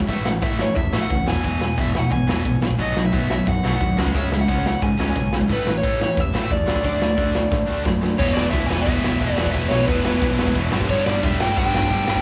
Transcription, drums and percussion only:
0.00 kick
0.09 kick, open hi-hat
0.26 snare
0.42 kick, open hi-hat
0.59 snare
0.76 kick, open hi-hat
0.93 snare
1.10 kick, open hi-hat
1.28 snare
1.36 kick
1.44 kick, open hi-hat
1.61 snare
1.78 kick, open hi-hat
1.95 snare
2.12 kick, open hi-hat
2.29 snare
2.45 kick, open hi-hat
2.62 snare
2.71 kick
2.79 kick, open hi-hat
2.97 snare
3.13 kick, open hi-hat
3.30 snare
3.47 kick, open hi-hat
3.65 snare
3.81 kick, open hi-hat
3.98 snare
4.06 kick
4.15 kick, open hi-hat
4.32 snare
4.48 kick, open hi-hat
4.66 snare
4.82 kick, open hi-hat
5.00 snare
5.16 kick, open hi-hat
5.33 snare
5.41 kick
5.49 kick, open hi-hat
5.67 snare
5.83 kick, open hi-hat
6.01 snare
6.17 kick, open hi-hat
6.35 snare
6.50 kick, open hi-hat
6.68 snare
6.76 kick
6.84 kick, open hi-hat
7.02 snare
7.17 kick, open hi-hat
7.35 snare
7.52 kick, snare
7.85 kick, snare
8.03 snare
8.19 kick, crash
8.37 snare
8.53 kick, crash
8.70 snare
8.87 kick, crash
9.04 snare
9.12 kick
9.21 kick, crash
9.38 snare
9.46 kick
9.54 kick, crash
9.71 snare
9.88 kick, crash
10.05 snare
10.22 kick, crash
10.39 snare
10.47 kick
10.55 kick, crash
10.72 snare
10.81 kick
10.89 kick, crash
11.06 snare
11.23 kick, crash
11.40 snare
11.57 kick, crash
11.75 snare
11.82 kick
11.90 kick, crash
12.08 snare
12.16 kick

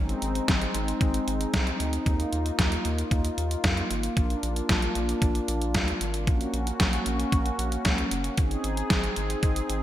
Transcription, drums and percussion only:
0.09 closed hi-hat
0.22 closed hi-hat
0.35 closed hi-hat
0.48 kick, snare, closed hi-hat
0.62 closed hi-hat
0.75 closed hi-hat
0.88 closed hi-hat
1.01 kick, closed hi-hat
1.14 closed hi-hat
1.28 closed hi-hat
1.41 closed hi-hat
1.54 kick, snare, closed hi-hat
1.67 closed hi-hat
1.80 closed hi-hat
1.93 closed hi-hat
2.06 kick, closed hi-hat
2.20 closed hi-hat
2.33 closed hi-hat
2.46 closed hi-hat
2.59 kick, snare, closed hi-hat
2.72 closed hi-hat
2.85 closed hi-hat
2.99 closed hi-hat
3.11 kick, closed hi-hat
3.25 closed hi-hat
3.38 closed hi-hat
3.51 closed hi-hat
3.64 kick, snare, closed hi-hat
3.77 closed hi-hat
3.91 closed hi-hat
4.03 closed hi-hat
4.17 kick, closed hi-hat
4.30 closed hi-hat
4.43 closed hi-hat
4.56 closed hi-hat
4.69 kick, snare, closed hi-hat
4.82 closed hi-hat
4.95 closed hi-hat
5.09 closed hi-hat
5.22 kick, closed hi-hat
5.35 closed hi-hat
5.48 closed hi-hat
5.62 closed hi-hat
5.74 kick, snare, closed hi-hat
5.88 closed hi-hat
6.01 closed hi-hat
6.14 closed hi-hat
6.27 kick, closed hi-hat
6.41 closed hi-hat
6.54 closed hi-hat
6.67 closed hi-hat
6.80 kick, snare, closed hi-hat
6.93 closed hi-hat
7.06 closed hi-hat
7.20 closed hi-hat
7.32 kick, closed hi-hat
7.46 closed hi-hat
7.59 closed hi-hat
7.72 closed hi-hat
7.85 kick, snare, closed hi-hat
7.98 closed hi-hat
8.11 closed hi-hat
8.24 closed hi-hat
8.38 kick, closed hi-hat
8.51 closed hi-hat
8.64 closed hi-hat
8.77 closed hi-hat
8.90 kick, snare, closed hi-hat
9.04 closed hi-hat
9.16 closed hi-hat
9.30 closed hi-hat
9.43 kick, closed hi-hat
9.56 closed hi-hat
9.70 closed hi-hat

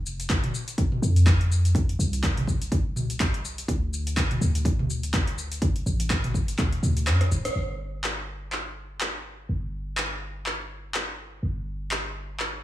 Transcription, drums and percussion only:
0.06 shaker
0.20 closed hi-hat, shaker
0.30 kick, clap, closed hi-hat, shaker
0.44 closed hi-hat, mid tom
0.55 shaker
0.68 closed hi-hat, shaker
0.78 kick, closed hi-hat, shaker
0.92 mid tom
1.03 shaker
1.16 closed hi-hat, shaker
1.26 kick, clap, closed hi-hat, shaker
1.41 closed hi-hat
1.52 shaker
1.65 closed hi-hat, shaker
1.75 kick, closed hi-hat, shaker
1.89 closed hi-hat
2.00 shaker
2.13 closed hi-hat, shaker
2.23 kick, clap, closed hi-hat, shaker
2.37 closed hi-hat, mid tom
2.47 kick, shaker
2.62 closed hi-hat, shaker
2.72 kick, closed hi-hat, shaker
2.96 mid tom, shaker
3.10 closed hi-hat, shaker
3.20 kick, clap, closed hi-hat, shaker
3.34 closed hi-hat
3.45 shaker
3.58 closed hi-hat, shaker
3.68 kick, closed hi-hat, shaker
3.93 shaker
4.07 closed hi-hat, shaker
4.17 kick, clap, closed hi-hat, shaker
4.31 closed hi-hat, mid tom
4.42 shaker
4.55 closed hi-hat, shaker
4.65 kick, closed hi-hat, shaker
4.79 mid tom
4.90 shaker
5.03 closed hi-hat, shaker
5.13 kick, clap, closed hi-hat, shaker
5.27 closed hi-hat
5.38 shaker
5.52 closed hi-hat, shaker
5.62 kick, closed hi-hat, shaker
5.76 closed hi-hat
5.87 shaker
6.00 closed hi-hat, shaker
6.10 kick, clap, closed hi-hat, shaker
6.24 closed hi-hat, mid tom
6.34 kick, shaker
6.48 closed hi-hat, shaker
6.59 kick, clap, closed hi-hat, mid tom, shaker
6.72 closed hi-hat
6.83 mid tom, shaker
6.97 closed hi-hat, shaker
7.07 cross-stick, clap, closed hi-hat, shaker
7.21 cross-stick, closed hi-hat
7.32 shaker
7.45 cross-stick, closed hi-hat, shaker
8.04 clap
8.52 clap
9.01 clap
9.97 clap
10.46 clap
10.94 clap
11.91 clap
12.40 clap

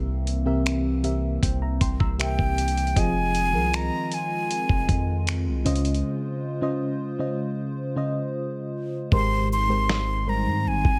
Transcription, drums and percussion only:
0.27 closed hi-hat
0.66 finger snap, closed hi-hat
1.04 closed hi-hat
1.43 kick, closed hi-hat
1.81 kick, closed hi-hat
2.00 kick
2.20 finger snap, closed hi-hat
2.39 kick
2.58 closed hi-hat
2.68 closed hi-hat
2.77 closed hi-hat
2.87 closed hi-hat
2.96 kick, closed hi-hat
3.35 closed hi-hat
3.74 finger snap, closed hi-hat
4.12 closed hi-hat
4.51 closed hi-hat
4.69 kick
4.89 kick, closed hi-hat
5.27 finger snap, closed hi-hat
5.66 closed hi-hat
5.75 closed hi-hat
5.85 closed hi-hat
5.94 closed hi-hat
9.12 kick
9.89 snare
10.85 kick

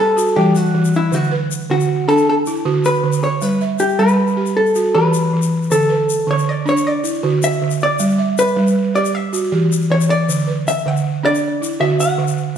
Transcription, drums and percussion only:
0.18 shaker
0.27 shaker
0.55 shaker
0.85 shaker
0.93 shaker
1.13 shaker
1.23 shaker
1.51 shaker
1.61 shaker
1.81 shaker
2.09 shaker
2.18 shaker
2.46 shaker
2.56 shaker
2.85 shaker
2.94 shaker
3.13 shaker
3.22 shaker
3.41 shaker
3.51 shaker
3.61 shaker
3.79 shaker
3.89 shaker
3.99 shaker
4.08 shaker
4.27 shaker
4.46 shaker
4.66 shaker
4.75 shaker
5.14 shaker
5.42 shaker
5.63 shaker
5.71 shaker
5.81 shaker
6.09 shaker
6.20 shaker
6.38 shaker
6.67 shaker
6.77 shaker
7.05 shaker
7.14 shaker
7.43 shaker
7.52 shaker
7.70 shaker
7.80 shaker
7.99 shaker
8.10 shaker
8.38 shaker
8.47 shaker
8.67 shaker
8.95 shaker
9.05 shaker
9.34 shaker
9.44 shaker
9.72 shaker
9.82 shaker
10.01 shaker
10.11 shaker
10.29 shaker
10.39 shaker
10.68 shaker
10.78 shaker
10.97 shaker
11.26 shaker
11.35 shaker
11.63 shaker
11.72 shaker
12.00 shaker
12.27 shaker
12.38 shaker

